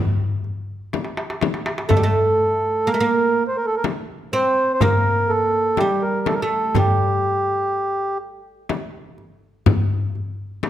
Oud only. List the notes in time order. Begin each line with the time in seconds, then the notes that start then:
1.89 A3
1.97 G3
2.03 A3
2.87 A#3
2.94 A3
3.00 A#3
4.33 C4
4.82 A#3
5.81 G3
6.42 A3
6.76 G3